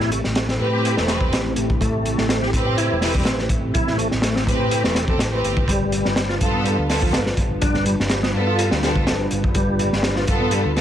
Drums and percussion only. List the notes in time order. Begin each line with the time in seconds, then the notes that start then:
0.00 snare
0.12 closed hi-hat
0.24 snare
0.35 snare, closed hi-hat
0.48 snare
0.85 closed hi-hat
0.97 snare
1.08 snare, closed hi-hat
1.21 kick
1.33 snare, closed hi-hat
1.56 closed hi-hat
1.70 kick
1.81 kick, closed hi-hat
2.06 closed hi-hat
2.18 snare
2.29 snare, closed hi-hat
2.43 snare
2.53 kick, closed hi-hat
2.78 closed hi-hat
3.02 snare, open hi-hat
3.15 kick
3.25 snare, closed hi-hat
3.39 snare
3.49 kick, closed hi-hat
3.74 kick, closed hi-hat
3.87 snare
3.99 closed hi-hat
4.11 snare
4.22 snare, closed hi-hat
4.36 snare
4.47 kick, closed hi-hat
4.71 closed hi-hat
4.84 snare
4.95 snare, closed hi-hat
5.08 kick
5.19 snare, closed hi-hat
5.44 closed hi-hat
5.57 kick
5.68 kick, closed hi-hat
5.92 closed hi-hat
6.05 snare
6.16 snare, closed hi-hat
6.29 snare
6.41 kick, closed hi-hat
6.65 closed hi-hat
6.90 snare, open hi-hat
7.02 kick
7.13 snare, closed hi-hat
7.26 snare
7.37 kick, closed hi-hat
7.61 kick, closed hi-hat
7.74 snare
7.86 closed hi-hat
8.00 snare
8.09 snare, closed hi-hat
8.23 snare
8.59 closed hi-hat
8.71 snare
8.83 snare, closed hi-hat
8.96 kick
9.07 snare, closed hi-hat
9.31 closed hi-hat
9.44 kick
9.55 kick, closed hi-hat
9.79 closed hi-hat
9.93 snare
10.03 snare, closed hi-hat
10.16 snare
10.27 kick, closed hi-hat
10.51 closed hi-hat
10.76 snare, open hi-hat